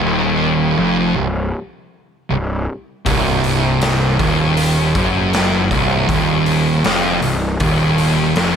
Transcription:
0.02 picked electric bass D#1, distorted electric guitar D#2
0.77 picked electric bass F1, distorted electric guitar F2
1.16 picked electric bass C1, distorted electric guitar C2
2.30 picked electric bass C1, distorted electric guitar C2
3.05 picked electric bass C1, distorted electric guitar C2, kick, open hi-hat
3.44 open hi-hat
3.82 snare, open hi-hat
4.19 picked electric bass D#1, distorted electric guitar D#2, kick, open hi-hat
4.57 open hi-hat
4.95 picked electric bass F#1, distorted electric guitar F#2, kick, open hi-hat
5.33 snare, open hi-hat
5.71 picked electric bass C1, distorted electric guitar C2, kick, open hi-hat
6.08 picked electric bass D#1, distorted electric guitar D#2, kick, open hi-hat
6.46 open hi-hat
6.84 picked electric bass F1, distorted electric guitar F2, snare, open hi-hat
7.22 picked electric bass C1, distorted electric guitar C2, open hi-hat
7.60 picked electric bass D#1, distorted electric guitar D#2, kick, open hi-hat
7.98 open hi-hat
8.36 picked electric bass F1, distorted electric guitar F2, snare, open hi-hat

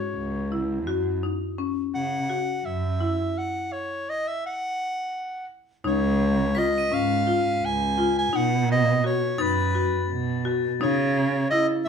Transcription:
Already playing: marimba F#4, soprano saxophone C#5
0.16 cello C#2
0.52 marimba E4
0.87 cello F#2, marimba F#4
1.23 marimba D#4
1.58 marimba C#4
1.95 cello C#3, soprano saxophone F#5
2.30 marimba F#4
2.65 cello F#2, soprano saxophone E5
3.00 marimba E4
3.39 soprano saxophone F#5
3.73 soprano saxophone C#5
4.10 soprano saxophone D#5
4.28 soprano saxophone E5
4.46 soprano saxophone F#5
5.84 cello C#2, marimba D#4, soprano saxophone C#5
6.55 marimba F4, soprano saxophone D#5, crotales B6
6.78 crotales D#7
6.91 cello G#2, marimba C#4, soprano saxophone F5
7.27 marimba F4
7.63 cello C#2, soprano saxophone G#5
7.98 marimba F4
8.19 soprano saxophone G#5
8.33 cello B2, marimba D#4, soprano saxophone F#5
8.72 soprano saxophone D#5
9.04 marimba F#4, soprano saxophone C#5
9.38 cello F#2, marimba D#4, soprano saxophone B4, crotales A6
9.75 marimba F#4
10.11 cello B2
10.45 marimba F#4
10.81 cello C#3, marimba D#4, soprano saxophone C#5
11.51 marimba E4, soprano saxophone D#5
11.85 soprano saxophone E5

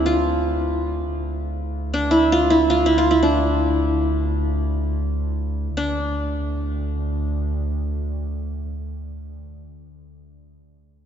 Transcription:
Already playing: double bass D2, qanun C4 D4 E4
0.06 qanun F4
1.13 double bass D2
1.94 qanun D4
2.11 qanun E4
2.32 qanun F4
2.50 qanun E4
2.70 qanun F4
2.86 qanun E4
2.98 qanun F4
3.11 qanun E4
3.23 qanun D4
5.77 double bass D2, qanun D4

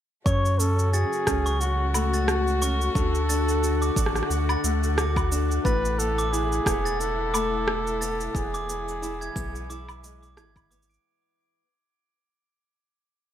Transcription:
0.25 steel-string acoustic guitar F#2, sub bass F#2, string quartet C#3 A3 F#4, flugelhorn C#5, synth texture F#5 F#6, glockenspiel C#6, kick, shaker
0.45 shaker
0.59 steel-string acoustic guitar C#4, flugelhorn A4, shaker
0.79 shaker
0.93 steel-string acoustic guitar F#4, flugelhorn G#4, glockenspiel A6, shaker
1.13 shaker
1.27 sub bass C#2, steel-string acoustic guitar C#4, kick, cross-stick, shaker
1.46 glockenspiel C#6, shaker
1.60 flugelhorn F#4, steel-string acoustic guitar F#4, shaker
1.94 steel-string acoustic guitar A3, low woodblock, shaker
2.14 glockenspiel A6, shaker
2.28 steel-string acoustic guitar F#4, cross-stick, shaker
2.47 shaker
2.62 steel-string acoustic guitar C#4, glockenspiel C#6, shaker
2.81 shaker
2.95 sub bass D2, steel-string acoustic guitar D3, string quartet D3, flugelhorn A4, kick, shaker
3.15 shaker
3.29 steel-string acoustic guitar D4, glockenspiel A6, shaker
3.49 shaker
3.63 steel-string acoustic guitar F#4, shaker
3.82 glockenspiel D6, shaker
3.96 sub bass A1, steel-string acoustic guitar D4, kick, shaker
4.06 cross-stick
4.16 cross-stick, shaker
4.23 cross-stick
4.30 sub bass D2, steel-string acoustic guitar F#4, shaker
4.49 glockenspiel A6, low woodblock, shaker
4.64 sub bass D2, steel-string acoustic guitar A3, shaker
4.83 shaker
4.98 steel-string acoustic guitar F#4, glockenspiel D6, cross-stick, shaker
5.16 kick, low woodblock, shaker
5.32 steel-string acoustic guitar D4, shaker
5.51 shaker
5.65 sub bass A1, steel-string acoustic guitar A2, string quartet B2 E4, flugelhorn B4, glockenspiel A6, kick, shaker
5.85 shaker
5.99 steel-string acoustic guitar B3, flugelhorn A4, shaker
6.18 glockenspiel D6, shaker
6.32 steel-string acoustic guitar E4, flugelhorn G#4, shaker
6.52 shaker
6.66 sub bass E1, steel-string acoustic guitar B3, kick, cross-stick, shaker
6.85 glockenspiel A6, shaker
7.00 steel-string acoustic guitar E4, flugelhorn A4, shaker
7.33 steel-string acoustic guitar A3, glockenspiel D6, low woodblock, shaker
7.67 steel-string acoustic guitar E4, cross-stick
7.87 shaker
8.01 steel-string acoustic guitar B3, glockenspiel A6, shaker
8.21 shaker
8.34 sub bass E1, steel-string acoustic guitar E2, string quartet G#3, flugelhorn G#4, kick, shaker
8.54 glockenspiel D6, shaker
8.68 steel-string acoustic guitar B3, shaker
8.88 shaker
9.02 steel-string acoustic guitar E4, shaker
9.21 glockenspiel G#6, shaker
9.36 sub bass B1, steel-string acoustic guitar B3, kick, shaker
9.55 shaker
9.69 sub bass B1, steel-string acoustic guitar E4, glockenspiel D6, shaker
9.89 low woodblock, shaker
10.03 steel-string acoustic guitar G#3, shaker
10.22 glockenspiel D6, shaker
10.37 sub bass G#1, steel-string acoustic guitar E4, glockenspiel G#6, cross-stick, shaker
10.56 kick, low woodblock, shaker
10.71 steel-string acoustic guitar B3, glockenspiel D6, shaker
10.82 shaker
10.90 glockenspiel D7, shaker
10.94 shaker

